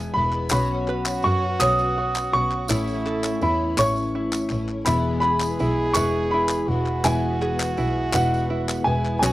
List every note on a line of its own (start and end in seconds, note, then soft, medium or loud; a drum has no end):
0.00 0.16 E2 medium
0.00 0.48 E2 medium
0.00 0.16 B2 medium
0.00 0.16 E3 medium
0.00 0.48 E3 medium
0.00 0.15 G#3 medium
0.00 0.53 G#3 medium
0.00 0.15 B3 medium
0.00 0.52 B3 medium
0.00 0.14 E4 medium
0.00 0.20 E4 loud
0.00 0.51 E4 medium
0.00 0.53 E4 medium
0.00 0.51 G#4 medium
0.00 0.52 B4 medium
0.00 0.51 E5 medium
0.00 0.53 E5 medium
0.00 0.11 G#5 loud
0.14 0.46 E1 medium
0.14 0.52 G#3 medium
0.14 0.51 B3 medium
0.14 0.52 E4 medium
0.14 0.50 B5 loud
0.18 0.51 E3 soft
0.32 clap soft
0.49 1.12 B1 loud
0.49 2.66 B1 medium
0.49 1.24 B2 medium
0.49 2.66 B2 medium
0.49 1.23 F#3 medium
0.49 1.52 F#3 medium
0.49 1.52 B3 medium
0.49 1.24 B3 medium
0.49 1.52 C#4 medium
0.49 1.25 C#4 loud
0.49 1.24 F#4 medium
0.49 2.70 F#4 loud
0.49 1.25 F#4 medium
0.49 1.52 B4 medium
0.49 1.52 C#5 loud
0.49 1.26 B5 loud
0.49 clap loud
0.49 tambourine medium
0.88 2.33 B4 medium
0.88 clap soft
1.05 clap medium
1.05 tambourine medium
1.22 1.55 F#2 loud
1.22 1.60 F#3 medium
1.22 1.61 B3 medium
1.22 1.61 C#4 medium
1.22 1.97 F#4 medium
1.22 1.58 C#6 loud
1.22 tambourine soft
1.27 1.61 F#4 medium
1.60 2.21 B1 loud
1.60 2.61 F#3 medium
1.60 2.34 F#3 medium
1.60 2.61 B3 medium
1.60 2.34 B3 medium
1.60 2.61 C#4 medium
1.60 2.32 C#4 medium
1.60 2.31 F#4 medium
1.60 2.61 B4 medium
1.60 2.70 C#5 medium
1.60 2.61 C#5 medium
1.60 2.35 D#6 loud
1.60 clap loud
1.60 tambourine loud
1.64 2.35 B2 medium
1.79 tambourine soft
1.98 2.70 F#4 medium
2.15 clap medium
2.15 tambourine medium
2.32 2.63 B1 medium
2.32 2.71 B3 soft
2.32 2.70 C#4 medium
2.32 2.69 F#4 medium
2.32 3.38 C#6 loud
2.51 clap soft
2.68 4.83 A1 medium
2.68 3.30 A1 loud
2.68 4.83 A2 medium
2.68 3.43 A2 medium
2.68 3.42 E3 medium
2.68 3.69 A3 medium
2.68 3.43 A3 loud
2.68 3.69 C#4 medium
2.68 3.43 C#4 medium
2.68 4.51 E4 loud
2.68 3.69 E4 medium
2.68 3.41 E4 medium
2.68 3.44 E4 loud
2.68 3.70 C#5 medium
2.68 3.69 E5 medium
2.68 clap medium
2.68 tambourine loud
2.87 tambourine soft
3.06 4.51 A4 medium
3.06 clap soft
3.23 clap medium
3.23 tambourine medium
3.41 3.72 E2 medium
3.41 3.77 E3 medium
3.41 3.77 A3 medium
3.41 3.77 C#4 medium
3.41 4.14 E4 medium
3.41 3.76 E4 medium
3.41 3.80 B5 loud
3.41 tambourine soft
3.77 4.39 A1 loud
3.77 4.51 A2 medium
3.77 4.86 E3 medium
3.77 4.78 A3 medium
3.77 4.51 A3 medium
3.77 4.50 C#4 medium
3.77 4.79 C#4 medium
3.77 4.49 E4 medium
3.77 4.78 E4 medium
3.77 4.79 C#5 medium
3.77 4.88 C#5 medium
3.77 4.79 E5 medium
3.77 4.56 C#6 loud
3.77 clap medium
3.77 tambourine loud
3.96 tambourine soft
4.15 4.85 E4 medium
4.32 clap medium
4.32 tambourine medium
4.50 4.81 A1 medium
4.50 4.86 A3 soft
4.50 4.86 C#4 medium
4.50 4.86 E4 medium
4.50 clap soft
4.50 tambourine soft
4.69 clap soft
4.85 5.47 E1 loud
4.85 5.59 E2 medium
4.85 7.01 E2 medium
4.85 5.59 B2 medium
4.85 5.58 E3 medium
4.85 7.01 E3 medium
4.85 5.87 G#3 medium
4.85 5.59 G#3 medium
4.85 5.87 B3 medium
4.85 5.61 B3 loud
4.85 5.59 E4 medium
4.85 5.87 E4 medium
4.85 5.60 E4 medium
4.85 6.70 G#4 loud
4.85 5.87 B4 medium
4.85 5.87 E5 medium
4.85 5.19 B5 medium
4.85 clap medium
4.85 tambourine loud
5.20 6.68 G#4 medium
5.20 5.97 B5 loud
5.20 clap soft
5.40 clap medium
5.40 tambourine medium
5.59 5.90 B1 loud
5.59 5.96 E3 medium
5.59 5.95 G#3 medium
5.59 5.95 B3 medium
5.59 6.32 E4 medium
5.59 5.95 E4 medium
5.59 tambourine soft
5.93 6.56 E1 loud
5.93 6.69 B2 medium
5.93 6.96 G#3 medium
5.93 6.69 G#3 medium
5.93 6.96 B3 medium
5.93 6.70 B3 medium
5.93 6.67 E4 medium
5.93 6.96 E4 medium
5.93 7.41 B4 medium
5.93 6.96 B4 medium
5.93 6.96 E5 medium
5.93 6.32 C#6 loud
5.93 clap medium
5.93 tambourine loud
5.98 6.70 E2 medium
5.98 6.69 E3 medium
6.31 7.04 E4 medium
6.31 7.06 B5 loud
6.49 clap medium
6.49 tambourine medium
6.68 6.98 E1 loud
6.68 7.03 E3 soft
6.68 7.03 G#3 medium
6.68 7.04 B3 medium
6.68 7.04 E4 medium
6.68 8.87 F#4 loud
6.86 clap soft
7.03 7.65 E1 loud
7.03 7.76 E2 medium
7.03 9.18 E2 medium
7.03 7.77 B2 medium
7.03 7.76 E3 medium
7.03 9.18 E3 medium
7.03 7.77 G#3 loud
7.03 8.05 G#3 medium
7.03 7.78 B3 medium
7.03 8.05 B3 medium
7.03 7.77 E4 medium
7.03 8.05 E4 medium
7.03 8.05 B4 medium
7.03 8.05 E5 medium
7.03 8.17 G#5 medium
7.03 clap medium
7.03 tambourine loud
7.42 8.86 G#4 medium
7.42 clap soft
7.59 clap medium
7.59 tambourine medium
7.77 8.08 B1 loud
7.77 8.13 E3 medium
7.77 8.13 G#3 medium
7.77 8.12 B3 medium
7.77 8.49 E4 medium
7.77 8.12 E4 medium
7.77 tambourine soft
8.12 8.74 E1 loud
8.12 8.87 E2 medium
8.12 8.86 B2 medium
8.12 8.86 E3 medium
8.12 9.13 G#3 medium
8.12 8.86 G#3 medium
8.12 8.85 B3 medium
8.12 9.14 B3 medium
8.12 8.83 E4 medium
8.12 9.14 E4 medium
8.12 9.14 B4 medium
8.12 9.23 B4 loud
8.12 9.14 E5 medium
8.12 8.88 F#5 medium
8.12 clap loud
8.12 tambourine loud
8.34 tambourine soft
8.50 9.22 E4 medium
8.69 clap medium
8.69 tambourine medium
8.84 9.16 E1 medium
8.84 9.22 E3 soft
8.84 9.23 G#3 medium
8.84 9.22 B3 medium
8.84 9.21 E4 medium
8.84 9.23 E4 loud
8.84 9.18 G#5 loud
9.05 clap soft
9.19 9.33 B1 loud
9.19 9.33 B1 medium
9.19 9.33 B2 medium
9.19 9.33 F#3 medium
9.19 9.33 B3 medium
9.19 9.33 C#4 medium
9.19 9.33 C#4 loud
9.19 9.33 F#4 medium
9.19 9.33 B4 medium
9.19 9.33 C#5 medium
9.19 9.33 G#5 medium
9.19 tambourine medium
9.23 9.33 B3 medium
9.23 9.33 C#4 loud
9.23 9.33 F#4 loud
9.23 clap loud